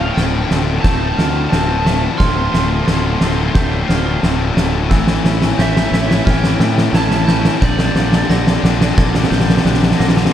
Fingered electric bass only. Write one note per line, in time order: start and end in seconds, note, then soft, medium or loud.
0.17 0.44 D1 medium
0.51 0.78 D1 medium
0.84 1.12 D1 medium
1.18 1.45 D2 medium
1.53 2.07 D1 medium
2.20 2.48 D1 medium
2.54 2.81 D1 medium
2.88 3.15 D1 medium
3.22 3.49 D1 medium
3.55 3.83 D1 medium
3.89 4.17 D1 medium
4.23 4.51 D1 medium
4.56 4.91 D1 medium
4.91 5.18 A1 loud
5.24 5.52 A1 medium
5.59 5.86 A1 medium
5.92 6.20 A1 medium
6.27 6.54 A1 medium
6.59 6.87 A2 loud
6.93 7.48 A1 loud
7.62 7.89 A#1 loud
7.95 8.23 A#1 medium
8.29 8.57 A#1 medium
8.63 8.91 A#1 medium
8.98 9.25 A#1 loud
9.31 9.58 A#1 loud
9.65 9.92 A#1 medium
10.00 10.27 A#1 medium